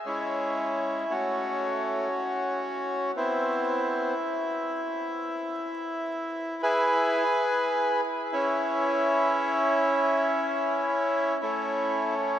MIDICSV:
0, 0, Header, 1, 2, 480
1, 0, Start_track
1, 0, Key_signature, 4, "major"
1, 0, Tempo, 500000
1, 11894, End_track
2, 0, Start_track
2, 0, Title_t, "Bandoneon"
2, 0, Program_c, 0, 23
2, 57, Note_on_c, 0, 56, 53
2, 57, Note_on_c, 0, 61, 53
2, 75, Note_on_c, 0, 64, 83
2, 1001, Note_off_c, 0, 56, 0
2, 1001, Note_off_c, 0, 61, 0
2, 1054, Note_on_c, 0, 57, 58
2, 1054, Note_on_c, 0, 61, 62
2, 1070, Note_on_c, 0, 66, 82
2, 1078, Note_off_c, 0, 64, 0
2, 1995, Note_off_c, 0, 57, 0
2, 2986, Note_off_c, 0, 61, 0
2, 2994, Note_off_c, 0, 66, 0
2, 3035, Note_on_c, 0, 59, 59
2, 3037, Note_on_c, 0, 60, 62
2, 3044, Note_on_c, 0, 64, 88
2, 3973, Note_off_c, 0, 59, 0
2, 3974, Note_off_c, 0, 60, 0
2, 6352, Note_off_c, 0, 64, 0
2, 6362, Note_on_c, 0, 71, 107
2, 6365, Note_on_c, 0, 68, 65
2, 6366, Note_on_c, 0, 64, 68
2, 6942, Note_off_c, 0, 64, 0
2, 7687, Note_off_c, 0, 71, 0
2, 7688, Note_off_c, 0, 68, 0
2, 7991, Note_on_c, 0, 64, 110
2, 8004, Note_on_c, 0, 61, 74
2, 10919, Note_off_c, 0, 64, 0
2, 10926, Note_off_c, 0, 61, 0
2, 10960, Note_on_c, 0, 64, 91
2, 10969, Note_on_c, 0, 61, 67
2, 10971, Note_on_c, 0, 57, 66
2, 11656, Note_off_c, 0, 64, 0
2, 11894, Note_off_c, 0, 57, 0
2, 11894, Note_off_c, 0, 61, 0
2, 11894, End_track
0, 0, End_of_file